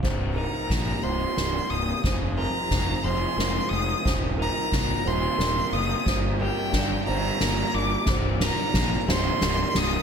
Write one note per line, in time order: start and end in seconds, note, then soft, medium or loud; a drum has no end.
0.02 0.45 C1 medium
0.02 1.71 C2 medium
0.02 2.03 C3 medium
0.02 2.02 G3 soft
0.02 2.03 A#3 medium
0.02 2.02 D#4 medium
0.02 0.37 C5 medium
0.02 kick medium
0.02 snare soft
0.02 crash medium
0.35 2.07 D#4 medium
0.35 1.03 A#4 medium
0.35 1.05 A#5 medium
0.35 ride medium
0.70 0.91 A#1 medium
0.70 1.70 A#3 medium
0.70 kick medium
0.70 snare soft
0.70 ride medium
1.02 1.24 C1 medium
1.02 2.04 C3 medium
1.02 1.37 C5 medium
1.02 1.72 C6 medium
1.02 ride medium
1.37 1.58 C1 medium
1.37 2.04 G3 medium
1.37 2.04 A#4 medium
1.37 snare soft
1.37 ride medium
1.70 1.91 C1 medium
1.70 2.05 A#3 medium
1.70 2.04 D#6 medium
1.70 ride medium
2.04 2.45 F1 medium
2.04 3.72 F2 medium
2.04 4.05 F3 medium
2.04 6.03 C4 medium
2.04 4.05 D#4 soft
2.04 4.04 G#4 medium
2.04 2.38 C5 medium
2.04 kick medium
2.04 snare soft
2.04 ride medium
2.37 4.05 F4 medium
2.37 3.05 A#4 medium
2.37 3.04 A#5 medium
2.37 ride medium
2.70 2.92 F1 medium
2.70 3.71 C4 medium
2.70 kick medium
2.70 snare medium
2.70 ride medium
3.03 3.25 F1 medium
3.03 4.06 F3 medium
3.03 3.39 C5 medium
3.03 3.70 C6 medium
3.03 ride medium
3.37 3.58 F1 medium
3.37 4.06 G#3 medium
3.37 4.06 A#4 medium
3.37 snare medium
3.37 ride medium
3.69 3.92 F1 medium
3.69 4.06 C4 medium
3.69 4.04 D#6 medium
3.69 ride medium
4.05 4.47 D#1 medium
4.05 5.74 C2 medium
4.05 6.05 D#3 medium
4.05 8.04 A#4 medium
4.05 4.39 C5 medium
4.05 kick medium
4.05 snare medium
4.05 ride medium
4.38 6.07 D#4 medium
4.38 5.06 A#4 medium
4.38 ride medium
4.42 5.09 A#5 medium
4.72 4.93 C2 medium
4.72 5.73 A#3 medium
4.72 kick medium
4.72 snare medium
4.72 ride medium
5.05 5.26 D#1 medium
5.05 6.07 C3 medium
5.05 5.39 C5 medium
5.05 5.75 C6 medium
5.05 ride loud
5.38 5.60 D#1 medium
5.38 7.07 G3 medium
5.38 6.06 A#4 medium
5.38 snare medium
5.38 ride medium
5.72 5.93 F#1 medium
5.72 6.74 A#3 medium
5.72 6.07 D#6 medium
5.72 ride medium
6.06 6.48 G1 medium
6.06 7.74 G2 medium
6.06 10.02 G3 medium
6.06 8.06 F4 medium
6.06 6.40 C5 medium
6.06 kick medium
6.06 snare medium
6.06 ride medium
6.40 8.08 G4 medium
6.40 7.07 A#4 medium
6.40 7.04 G5 medium
6.40 ride medium
6.73 6.94 G1 medium
6.73 7.73 D4 medium
6.73 kick medium
6.73 snare medium
6.73 ride medium
7.05 7.29 G1 medium
7.05 8.07 G3 medium
7.05 7.41 C5 medium
7.05 7.75 A#5 medium
7.05 ride medium
7.40 7.61 G1 medium
7.40 8.08 A#3 medium
7.40 8.08 A#4 medium
7.40 snare medium
7.40 ride medium
7.74 7.95 G1 medium
7.74 8.08 D4 medium
7.74 8.08 D6 medium
7.74 ride medium
8.06 8.49 C1 medium
8.06 9.75 C2 medium
8.06 8.41 C5 medium
8.06 kick medium
8.06 snare medium
8.06 crash medium
8.10 10.02 C3 medium
8.10 10.02 A#3 medium
8.10 10.02 D#4 medium
8.40 10.02 D#4 medium
8.40 9.08 A#4 medium
8.40 9.05 A#5 medium
8.40 snare medium
8.40 ride medium
8.74 8.95 A#1 medium
8.74 9.73 A#3 medium
8.74 kick medium
8.74 snare medium
8.74 ride medium
9.08 9.29 C1 medium
9.08 10.02 C3 medium
9.08 9.42 C5 medium
9.08 9.79 C6 medium
9.08 snare medium
9.08 ride medium
9.41 9.62 C1 medium
9.41 10.02 G3 medium
9.41 10.02 A#4 medium
9.41 snare medium
9.41 ride medium
9.74 9.96 C1 medium
9.74 10.02 A#3 medium
9.74 10.02 D#6 medium
9.74 snare medium
9.74 ride medium